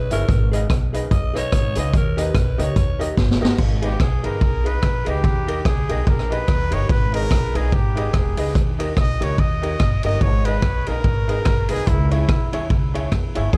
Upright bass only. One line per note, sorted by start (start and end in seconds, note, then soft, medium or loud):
0.11 0.26 G1 medium
0.29 0.64 G#1 loud
0.70 1.05 B1 loud
1.12 1.46 B1 medium
1.53 1.73 G#1 loud
1.77 1.91 C#2 medium
1.93 2.29 D#2 loud
2.35 2.55 B1 loud
2.59 2.74 C#2 medium
2.76 3.11 D#2 medium
3.18 3.38 G1 loud
3.42 3.56 G1 medium
3.59 3.94 G#1 loud
4.00 4.21 B1 medium
4.24 4.39 G1 medium
4.41 4.76 B1 medium
4.83 5.04 A#1 loud
5.07 5.22 C#2 medium
5.24 5.60 D#2 loud
5.66 5.86 C#2 medium
5.89 6.04 B1 loud
6.07 6.42 A#1 loud
6.48 6.73 D#2 loud
6.71 6.87 G1 medium
6.90 7.25 G#1 loud
7.31 7.52 A#1 loud
7.55 7.70 B1 loud
7.72 8.08 G#1 loud
8.14 8.35 E1 loud
8.37 8.52 C#2 medium
8.55 8.91 D#2 loud
8.97 9.18 B1 medium
9.21 9.36 C#2 medium
9.38 9.74 D#2 medium
9.80 10.01 G1 medium
10.05 10.19 G1 medium
10.21 10.56 G#1 loud
10.88 11.02 A#1 medium
11.04 11.39 G#1 medium
11.46 11.67 G1 loud
11.71 11.85 B1 medium
11.87 12.23 C#2 loud
12.54 12.68 D#2 medium
12.71 13.06 C#2 medium
13.12 13.33 E2 medium
13.37 13.51 G1 medium
13.53 13.57 G#1 loud